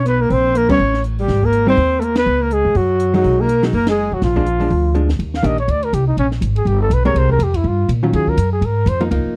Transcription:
Already playing: B1
0.06 B3 B4, closed hi-hat
0.21 A#3 A#4
0.30 A#1 C4 C5, open hi-hat
0.55 A#3 A#4, closed hi-hat
0.69 G3 B3 C#4 C#5, kick, crash
0.79 A1
0.94 snare
1.04 closed hi-hat
1.19 G3 G4, open hi-hat
1.28 G#1, snare, open hi-hat
1.43 A#3 A#4, kick
1.53 closed hi-hat
1.67 G3 C4 D#4 C5
1.77 D#2, open hi-hat
1.99 A3 A#3 A4, closed hi-hat
2.04 A#4
2.16 B3 B4, snare, ride
2.26 C#2
2.41 A#3 A#4
2.51 G#3 G#4, closed hi-hat
2.65 F2
2.75 F#2 F#3 F#4, open hi-hat
3.00 closed hi-hat
3.14 F#3 G#3 D#4 F#4, open hi-hat
3.24 B1, open hi-hat
3.40 A#3 A#4
3.49 closed hi-hat
3.63 F#3 G#3 D#4, snare, open hi-hat
3.73 F#1 A#3 A#4, open hi-hat
3.87 G#3 G#4, snare, ride
4.12 F2 F#3 F#4
4.22 A#1 F3 F4, snare, open hi-hat
4.36 F3 G#3 D4, kick
4.46 closed hi-hat
4.60 F3 G#3 D4, open hi-hat
4.70 D2, open hi-hat
4.95 F3 G#3 D4, closed hi-hat
5.09 snare, open hi-hat
5.19 D#2, ride
5.34 F5, snare
5.43 A#1 D#3 A#3 D4 G4 D#5, hi-hat pedal, ride
5.58 C#5, ride
5.68 D2 D5, ride
5.83 A#4, ride
5.93 C2 G4, hi-hat pedal, ride
6.08 D#4
6.17 A#1 C#4, ride
6.31 snare
6.41 G#1, hi-hat pedal, ride
6.56 G#4, ride
6.65 G1 G4, ride
6.82 A4
6.90 B1 B4, hi-hat pedal, ride
7.05 G#3 C4 G4 A#4 C#5, ride
7.14 C2 C5, ride
7.29 A#4, kick
7.39 F2, hi-hat pedal, ride
7.43 G4
7.54 E4, kick, ride
7.64 G2 F4
7.89 A#2, hi-hat pedal, ride
8.03 D#3 F#3 C#4 F4
8.13 D#2 G#4, ride
8.27 A#4, muted upright bass stroke, kick
8.37 F#2, hi-hat pedal, ride
8.53 G#4
8.61 G#2, ride
8.65 A#4
8.86 F2 C5, hi-hat pedal, ride
9.00 F3 A#3 D#4, ride
9.11 C#2 F3 A#3 D#4, ride
9.25 muted upright bass stroke

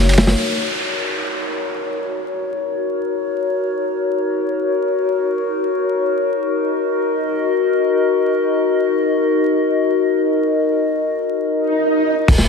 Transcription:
Already playing: F#1 D#4 F#4 A#4 C#5
0.09 snare, closed hi-hat, open hi-hat
0.14 snare, closed hi-hat
0.18 snare, closed hi-hat, open hi-hat
0.27 snare, open hi-hat
0.36 D#4 F#4 A#4 C#5, downlifter
6.33 D#5
11.54 swell
12.28 D#1 D#4 F#4 A#4 C#5, kick, open hi-hat, crash, sub drop
12.38 snare

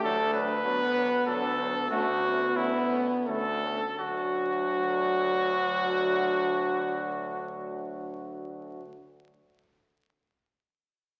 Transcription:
Already playing: A3
0.03 D2 F#3 D4 A4
0.34 F#3 D4 B4
0.65 D2 F#3 B3 D4
0.96 F#3 D4
1.27 D2 F#3 D4 A4
1.59 F#3 D4
1.91 D2 A3 C#4 F#4
2.23 A3 B3 C#4
2.56 D2 A3 C#4 E4
2.92 A3 C#4
3.27 D2 A3 C#4 A4
3.64 A3 C#4
4.00 D2 D3 F#3 A3 F#4

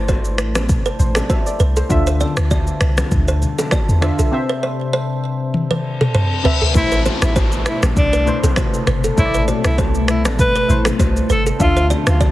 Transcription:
Already playing: G1 A3 E4 A4 B4 C5
0.08 C5, kick, high bongo, shaker
0.25 shaker
0.38 A1, finger snap, cross-stick, shaker
0.55 finger snap, cross-stick, low bongo, shaker
0.69 kick, low conga, shaker
0.86 B4, shaker
0.99 A1 C5, low conga, shaker
1.15 A4 D5, finger snap, cross-stick, low bongo, shaker
1.30 C5 E5, kick, high bongo, shaker
1.46 D5, shaker
1.60 C2 B4, shaker
1.77 A4 C5, shaker
1.89 D2 D3 D4 F4 E5, kick, low conga, shaker
2.07 C5, shaker
2.21 D5, low bongo, shaker
2.37 D2, finger snap, cross-stick, shaker
2.51 D5, kick, high bongo, shaker
2.67 shaker
2.81 C2, finger snap, cross-stick, shaker
2.98 finger snap, cross-stick, low bongo, shaker
3.11 D2, kick, low conga, shaker
3.28 C5, shaker
3.42 low conga, shaker
3.59 A4, low bongo, shaker
3.71 D5, finger snap, kick, cross-stick, high bongo, shaker
3.89 E2, shaker
4.01 D3 D4 F4 C5 E5, finger snap, cross-stick, shaker
4.19 B1 A4, shaker
4.31 C3 C4 C5 E5
4.49 B4
4.63 C5
4.93 C5
5.54 high tom, reverse cymbal
5.71 B4, high tom
6.01 A4, mid tom
6.15 C5, mid tom
6.44 C3 C4 B4 E5, floor tom
6.62 A4, floor tom
6.74 A1 B2 C3 A3 E4 A4 C5, kick, downlifter, low conga, shaker
6.92 B4, shaker
7.06 C5, high bongo, low bongo, shaker
7.22 A1 E4, finger snap, cross-stick, low bongo, shaker
7.36 C5, kick, high bongo, shaker
7.52 shaker
7.66 E4, finger snap, cross-stick, shaker
7.83 A1, finger snap, cross-stick, low bongo, shaker
7.97 C2 D4, kick, low conga, shaker
8.13 B4, shaker
8.26 A3 E4 B4 C5, low conga, shaker
8.43 B1 A4, low bongo, shaker
8.56 C5, finger snap, kick, cross-stick, high bongo, shaker
8.74 shaker
8.87 G1 B4, finger snap, cross-stick, shaker
9.04 A4, shaker
9.16 A1 A3 E4 C5 C#5, kick, low conga, shaker
9.25 D5
9.34 B4, shaker
9.48 C5, high bongo, low bongo, shaker
9.64 C2 E4, finger snap, cross-stick, low bongo, shaker
9.78 C5, kick, high bongo, shaker
9.95 shaker
10.08 E4, finger snap, cross-stick, shaker
10.25 A1, finger snap, cross-stick, low bongo, shaker
10.39 B4, kick, low conga, shaker
10.56 B4, shaker
10.68 A1 A3 E4 B4 C5, low conga, shaker
10.85 A4, finger snap, cross-stick, low bongo, shaker
10.99 C2 C5, kick, high bongo, shaker
11.17 shaker
11.30 G1 A4 B4, shaker
11.47 A4, shaker
11.59 D2 D3 D4 F4 E5, kick, low conga, shaker
11.77 C5, shaker
11.90 D5, high bongo, low bongo, shaker
12.07 D2 F4, finger snap, cross-stick, low bongo, shaker
12.21 D5, kick, high bongo, shaker

